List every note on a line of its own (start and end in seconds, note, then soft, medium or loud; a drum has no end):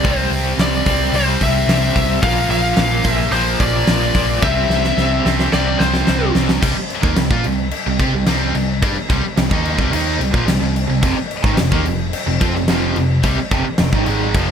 0.00 0.26 C2 loud
0.00 1.12 C3 loud
0.00 0.29 D5 medium
0.05 1.13 G3 loud
0.05 1.14 C4 loud
0.05 kick loud
0.05 open hi-hat medium
0.30 0.53 C2 medium
0.30 open hi-hat medium
0.58 0.80 C2 loud
0.58 0.85 C3 medium
0.58 0.86 G3 medium
0.58 0.86 C4 medium
0.58 1.17 D5 loud
0.58 snare loud
0.58 open hi-hat medium
0.86 1.08 C2 medium
0.86 1.13 C3 medium
0.86 2.23 C3 medium
0.86 1.14 G3 medium
0.86 2.22 G3 medium
0.86 2.22 C4 medium
0.86 1.14 C4 loud
0.86 kick medium
0.86 open hi-hat medium
1.13 1.35 C2 loud
1.13 2.21 C3 medium
1.13 2.23 G3 medium
1.13 1.41 C5 medium
1.13 open hi-hat medium
1.17 2.23 C4 medium
1.41 1.63 C2 medium
1.41 2.20 E5 loud
1.41 kick medium
1.41 open hi-hat medium
1.67 1.90 C2 medium
1.67 1.94 C3 medium
1.67 1.95 G3 medium
1.67 1.95 C4 loud
1.67 snare loud
1.67 open hi-hat medium
1.95 2.18 C2 medium
1.95 2.22 C3 medium
1.95 2.22 G3 medium
1.95 2.22 C4 loud
1.95 kick medium
1.95 open hi-hat medium
2.22 2.44 A#1 loud
2.22 3.31 A#2 medium
2.22 3.32 F3 loud
2.22 3.32 A#3 loud
2.22 2.50 F5 loud
2.22 kick loud
2.22 open hi-hat medium
2.49 2.72 A#1 medium
2.49 3.09 F5 loud
2.49 open hi-hat medium
2.77 3.00 A#1 loud
2.77 3.03 A#2 medium
2.77 3.03 F3 loud
2.77 3.03 A#3 medium
2.77 snare loud
2.77 open hi-hat medium
3.04 3.27 A#1 loud
3.04 3.30 A#2 medium
3.04 4.41 A#2 medium
3.04 3.31 F3 medium
3.04 4.41 F3 medium
3.04 4.41 A#3 medium
3.04 3.31 A#3 loud
3.04 kick medium
3.04 open hi-hat medium
3.09 3.36 E5 loud
3.31 3.54 A#1 medium
3.31 4.41 A#2 medium
3.31 4.42 F3 medium
3.31 3.61 C5 medium
3.31 open hi-hat medium
3.35 4.42 A#3 medium
3.60 3.82 A#1 loud
3.60 4.42 D5 loud
3.60 kick medium
3.60 open hi-hat medium
3.87 4.10 A#1 medium
3.87 4.13 A#2 medium
3.87 4.14 F3 loud
3.87 4.14 A#3 loud
3.87 snare loud
3.87 open hi-hat medium
4.14 4.37 A#1 medium
4.14 4.41 A#2 medium
4.14 4.41 F3 medium
4.14 4.41 A#3 medium
4.14 kick medium
4.14 open hi-hat medium
4.41 4.64 C2 loud
4.41 5.50 C3 loud
4.41 5.51 G3 medium
4.41 5.52 C4 loud
4.41 5.53 E5 loud
4.41 kick loud
4.41 snare medium
4.68 4.91 C2 medium
4.68 snare medium
4.84 snare medium
4.97 5.19 C2 loud
4.97 5.24 C3 medium
4.97 5.25 G3 medium
4.97 5.25 C4 medium
4.97 snare medium
5.25 5.47 C2 medium
5.25 5.52 C3 medium
5.25 6.60 C3 medium
5.25 6.61 G3 medium
5.25 5.52 G3 medium
5.25 6.61 C4 medium
5.25 5.52 C4 loud
5.25 snare medium
5.39 snare medium
5.52 5.75 C2 medium
5.52 6.60 C3 medium
5.52 6.61 G3 medium
5.52 6.62 C4 medium
5.52 5.81 D5 medium
5.52 snare medium
5.79 6.02 C2 medium
5.79 6.31 C5 medium
5.79 snare medium
5.94 snare medium
6.07 6.30 C2 medium
6.07 6.33 C3 medium
6.07 6.34 G3 medium
6.07 6.34 C4 loud
6.07 snare loud
6.35 6.57 C2 loud
6.35 6.61 C3 medium
6.35 6.61 G3 medium
6.35 6.61 C4 medium
6.35 snare loud
6.49 snare loud
6.61 6.75 C2 loud
6.61 6.75 C3 medium
6.61 6.75 G3 loud
6.61 kick loud
6.61 crash loud
6.61 crash medium
6.75 muted overdriven electric guitar stroke medium
6.75 muted picked electric bass stroke soft
6.75 muted distorted electric guitar stroke medium
6.90 crash medium
7.03 7.16 D#2 medium
7.03 7.17 D#3 medium
7.03 7.17 A#3 loud
7.03 kick loud
7.16 7.29 C2 medium
7.16 7.31 C3 medium
7.16 7.31 G3 medium
7.16 snare loud
7.16 crash medium
7.30 7.43 A#2 medium
7.30 7.44 A#3 loud
7.30 7.45 F4 loud
7.30 kick loud
7.44 7.71 C2 medium
7.44 7.67 C3 medium
7.44 7.67 G3 medium
7.44 crash medium
7.71 crash medium
7.87 7.99 C2 medium
7.87 8.00 C3 medium
7.87 7.99 G3 medium
7.99 8.12 C3 medium
7.99 8.13 C4 medium
7.99 8.13 G4 loud
7.99 kick loud
7.99 crash medium
8.13 8.26 C2 medium
8.13 8.26 C3 medium
8.13 8.27 G3 medium
8.26 8.53 C2 medium
8.26 8.54 C3 medium
8.26 8.54 G3 loud
8.26 8.54 C4 loud
8.26 snare loud
8.26 crash medium
8.54 8.80 C2 medium
8.54 8.77 C3 medium
8.54 8.77 G3 medium
8.54 crash medium
8.82 8.95 G2 loud
8.82 8.96 G3 loud
8.82 8.96 D4 loud
8.82 kick loud
8.82 crash medium
8.96 muted distorted electric guitar stroke medium
8.96 muted picked electric bass stroke soft
8.96 muted overdriven electric guitar stroke medium
9.10 9.23 C2 loud
9.10 9.23 C3 medium
9.10 9.24 G3 loud
9.10 kick loud
9.10 crash medium
9.23 muted overdriven electric guitar stroke medium
9.23 muted picked electric bass stroke soft
9.23 muted distorted electric guitar stroke medium
9.37 9.50 C2 medium
9.37 9.52 C3 medium
9.37 9.52 G3 medium
9.37 snare loud
9.37 crash medium
9.51 9.77 D#2 loud
9.51 9.79 D#3 medium
9.51 9.79 A#3 loud
9.51 9.79 D#4 loud
9.51 kick loud
9.65 crash medium
9.78 9.91 C2 medium
9.78 9.93 C3 medium
9.78 9.93 G3 loud
9.78 kick loud
9.91 10.18 D#2 loud
9.91 10.20 D#3 loud
9.91 10.20 A#3 loud
9.91 10.21 D#4 loud
9.91 crash medium
10.19 10.33 C2 medium
10.19 10.35 C3 medium
10.19 10.32 G3 medium
10.19 crash medium
10.23 10.36 G3 medium
10.31 10.46 A#1 loud
10.31 10.46 A#2 medium
10.31 10.46 F3 loud
10.31 kick loud
10.35 10.48 A#2 medium
10.35 10.49 F3 medium
10.46 10.60 C2 medium
10.46 10.59 C3 medium
10.46 10.59 G3 medium
10.46 snare loud
10.46 crash medium
10.51 10.63 C3 medium
10.51 10.63 G3 medium
10.60 10.87 C2 medium
10.60 10.85 C3 medium
10.60 10.85 G3 medium
10.76 crash medium
10.88 11.02 C2 medium
10.88 11.02 C3 medium
10.88 11.04 G3 medium
11.02 11.16 F1 loud
11.02 11.16 F2 loud
11.02 11.16 C3 loud
11.02 kick loud
11.02 crash medium
11.16 muted overdriven electric guitar stroke medium
11.16 muted picked electric bass stroke soft
11.16 muted distorted electric guitar stroke medium
11.31 crash medium
11.44 11.57 G#1 loud
11.44 11.58 G#2 medium
11.44 11.58 D#3 loud
11.44 kick loud
11.44 snare soft
11.57 11.71 F1 medium
11.57 11.72 F2 medium
11.57 11.72 C3 medium
11.57 snare loud
11.57 crash medium
11.72 11.85 D#2 medium
11.72 11.85 D#3 loud
11.72 11.85 A#3 loud
11.72 kick loud
11.85 12.12 F1 medium
11.85 12.08 F2 medium
11.85 12.08 C3 medium
11.85 crash medium
12.13 crash medium
12.27 12.40 F1 medium
12.27 12.41 F2 medium
12.27 12.40 C3 medium
12.40 12.54 F2 medium
12.40 12.54 F3 loud
12.40 12.54 C4 loud
12.40 kick loud
12.40 crash medium
12.55 12.68 F1 medium
12.55 12.68 F2 medium
12.55 12.69 C3 medium
12.55 snare soft
12.68 12.94 F1 medium
12.68 12.96 F2 medium
12.68 12.96 C3 medium
12.68 12.96 F3 loud
12.68 snare loud
12.68 crash medium
12.96 13.22 F1 medium
12.96 13.19 F2 medium
12.96 13.19 C3 medium
12.96 crash medium
13.23 13.36 C2 loud
13.23 13.37 C3 medium
13.23 13.38 G3 loud
13.23 kick loud
13.23 crash medium
13.38 muted distorted electric guitar stroke medium
13.38 muted picked electric bass stroke soft
13.38 muted overdriven electric guitar stroke medium
13.51 13.64 F1 loud
13.51 13.65 F2 medium
13.51 13.65 C3 medium
13.51 kick loud
13.51 crash medium
13.65 muted picked electric bass stroke soft
13.65 muted overdriven electric guitar stroke medium
13.65 muted distorted electric guitar stroke medium
13.78 13.92 F1 medium
13.78 13.93 F2 medium
13.78 13.93 C3 medium
13.78 snare loud
13.78 crash medium
13.93 14.06 G#1 medium
13.93 14.06 G#2 medium
13.93 14.05 D#3 loud
13.93 kick loud
14.06 14.33 G#1 loud
14.06 14.33 G#2 loud
14.06 14.34 D#3 loud
14.06 14.34 G#3 loud
14.06 crash medium
14.34 14.51 F1 medium
14.34 14.51 F2 loud
14.34 14.51 C3 loud
14.34 14.51 F3 loud
14.34 kick loud
14.34 crash medium